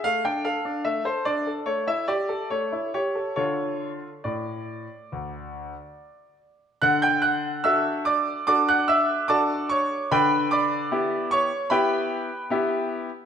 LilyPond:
\new Staff \with { instrumentName = "Grand piano" } { \time 4/4 \key d \minor \tempo 4 = 73 << { f''16 g''16 f''8 e''16 c''16 d''8 cis''16 e''16 d''8 cis''8 cis''8 | cis''4 d''2~ d''8 r8 | \key d \major <fis'' fis'''>16 <g'' g'''>16 <fis'' fis'''>8 <e'' e'''>8 <d'' d'''>8 <d'' d'''>16 <fis'' fis'''>16 <e'' e'''>8 <d'' a'' d'''>8 <cis'' cis'''>8 | <b' g'' b''>8 <d'' b'' d'''>4 <cis'' cis'''>8 <b' g'' b''>4. r8 | } \\ { a16 d'16 a'16 d'16 a16 a'16 d'16 a'16 a16 e'16 g'16 a'16 a16 e'16 g'16 a'16 | <d f' a'>4 a,4 d,4 r4 | d4 <d' fis' a'>4 <d' fis' a'>4 <d' fis' a'>4 | d4 <b e' g'>4 <b e' g'>4 <b e' g'>4 | } >> }